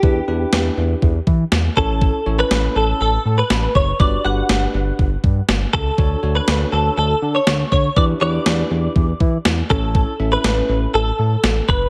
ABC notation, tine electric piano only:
X:1
M:4/4
L:1/8
Q:1/4=121
K:Amix
V:1 name="Tine electric piano"
[DEGB] [DEGB]3 z3 [CEAc]- | [CEAc] [CEAc]3 z4 | [DFGB] [DFGB]3 z4 | [DFAc] [DFAc]3 z4 |
[DEGB] [DEGB]3 z3 [CEAc]- | [CEAc] [CEAe]3 z4 |]